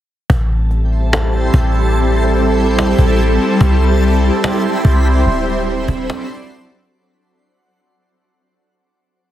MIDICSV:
0, 0, Header, 1, 5, 480
1, 0, Start_track
1, 0, Tempo, 413793
1, 343, Time_signature, 4, 2, 24, 8
1, 10808, End_track
2, 0, Start_track
2, 0, Title_t, "Synth texture"
2, 0, Program_c, 0, 99
2, 343, Note_on_c, 0, 67, 78
2, 344, Note_on_c, 0, 72, 69
2, 344, Note_on_c, 0, 81, 87
2, 4145, Note_off_c, 0, 67, 0
2, 4145, Note_off_c, 0, 72, 0
2, 4145, Note_off_c, 0, 81, 0
2, 4183, Note_on_c, 0, 83, 83
2, 4184, Note_on_c, 0, 72, 73
2, 4185, Note_on_c, 0, 64, 80
2, 6084, Note_off_c, 0, 83, 0
2, 6085, Note_off_c, 0, 64, 0
2, 6085, Note_off_c, 0, 72, 0
2, 6104, Note_on_c, 0, 66, 77
2, 6105, Note_on_c, 0, 74, 72
2, 6105, Note_on_c, 0, 84, 85
2, 8005, Note_off_c, 0, 66, 0
2, 8005, Note_off_c, 0, 74, 0
2, 8005, Note_off_c, 0, 84, 0
2, 10808, End_track
3, 0, Start_track
3, 0, Title_t, "Ambient pad"
3, 0, Program_c, 1, 92
3, 343, Note_on_c, 1, 64, 71
3, 344, Note_on_c, 1, 55, 81
3, 344, Note_on_c, 1, 60, 74
3, 344, Note_on_c, 1, 69, 86
3, 4145, Note_off_c, 1, 60, 0
3, 4145, Note_off_c, 1, 64, 0
3, 4145, Note_off_c, 1, 69, 0
3, 4183, Note_on_c, 1, 72, 85
3, 4184, Note_on_c, 1, 60, 71
3, 4184, Note_on_c, 1, 64, 72
3, 6058, Note_off_c, 1, 55, 0
3, 6084, Note_off_c, 1, 72, 0
3, 6085, Note_off_c, 1, 60, 0
3, 6085, Note_off_c, 1, 64, 0
3, 6104, Note_on_c, 1, 60, 73
3, 6104, Note_on_c, 1, 62, 72
3, 6105, Note_on_c, 1, 54, 77
3, 6105, Note_on_c, 1, 69, 89
3, 8005, Note_off_c, 1, 54, 0
3, 8005, Note_off_c, 1, 60, 0
3, 8005, Note_off_c, 1, 62, 0
3, 8005, Note_off_c, 1, 69, 0
3, 10808, End_track
4, 0, Start_track
4, 0, Title_t, "808-style bass"
4, 0, Program_c, 2, 38
4, 344, Note_on_c, 2, 33, 106
4, 1738, Note_off_c, 2, 33, 0
4, 1783, Note_on_c, 2, 33, 107
4, 3417, Note_off_c, 2, 33, 0
4, 3462, Note_on_c, 2, 33, 95
4, 3924, Note_off_c, 2, 33, 0
4, 4184, Note_on_c, 2, 36, 111
4, 4990, Note_off_c, 2, 36, 0
4, 5623, Note_on_c, 2, 36, 107
4, 6084, Note_off_c, 2, 36, 0
4, 6105, Note_on_c, 2, 26, 108
4, 6796, Note_off_c, 2, 26, 0
4, 6823, Note_on_c, 2, 26, 106
4, 7063, Note_off_c, 2, 26, 0
4, 10808, End_track
5, 0, Start_track
5, 0, Title_t, "Cajon"
5, 345, Note_on_c, 9, 36, 119
5, 461, Note_off_c, 9, 36, 0
5, 821, Note_on_c, 9, 38, 46
5, 937, Note_off_c, 9, 38, 0
5, 1312, Note_on_c, 9, 38, 124
5, 1428, Note_off_c, 9, 38, 0
5, 1542, Note_on_c, 9, 38, 38
5, 1658, Note_off_c, 9, 38, 0
5, 1783, Note_on_c, 9, 36, 96
5, 1899, Note_off_c, 9, 36, 0
5, 2022, Note_on_c, 9, 38, 38
5, 2138, Note_off_c, 9, 38, 0
5, 2264, Note_on_c, 9, 38, 40
5, 2380, Note_off_c, 9, 38, 0
5, 2741, Note_on_c, 9, 38, 45
5, 2857, Note_off_c, 9, 38, 0
5, 3231, Note_on_c, 9, 38, 122
5, 3347, Note_off_c, 9, 38, 0
5, 3462, Note_on_c, 9, 36, 88
5, 3578, Note_off_c, 9, 36, 0
5, 3704, Note_on_c, 9, 38, 42
5, 3820, Note_off_c, 9, 38, 0
5, 3942, Note_on_c, 9, 38, 36
5, 4058, Note_off_c, 9, 38, 0
5, 4184, Note_on_c, 9, 36, 122
5, 4300, Note_off_c, 9, 36, 0
5, 4659, Note_on_c, 9, 38, 45
5, 4775, Note_off_c, 9, 38, 0
5, 5150, Note_on_c, 9, 38, 126
5, 5266, Note_off_c, 9, 38, 0
5, 5380, Note_on_c, 9, 38, 41
5, 5496, Note_off_c, 9, 38, 0
5, 5622, Note_on_c, 9, 36, 92
5, 5738, Note_off_c, 9, 36, 0
5, 5862, Note_on_c, 9, 38, 34
5, 5978, Note_off_c, 9, 38, 0
5, 6103, Note_on_c, 9, 38, 42
5, 6219, Note_off_c, 9, 38, 0
5, 6580, Note_on_c, 9, 38, 45
5, 6696, Note_off_c, 9, 38, 0
5, 6823, Note_on_c, 9, 36, 94
5, 6939, Note_off_c, 9, 36, 0
5, 7072, Note_on_c, 9, 38, 120
5, 7188, Note_off_c, 9, 38, 0
5, 7304, Note_on_c, 9, 38, 42
5, 7384, Note_off_c, 9, 38, 0
5, 7384, Note_on_c, 9, 38, 38
5, 7464, Note_off_c, 9, 38, 0
5, 7464, Note_on_c, 9, 38, 34
5, 7544, Note_off_c, 9, 38, 0
5, 7544, Note_on_c, 9, 38, 31
5, 7624, Note_off_c, 9, 38, 0
5, 7624, Note_on_c, 9, 38, 27
5, 7705, Note_off_c, 9, 38, 0
5, 7705, Note_on_c, 9, 38, 24
5, 7785, Note_off_c, 9, 38, 0
5, 7785, Note_on_c, 9, 38, 30
5, 7901, Note_off_c, 9, 38, 0
5, 10808, End_track
0, 0, End_of_file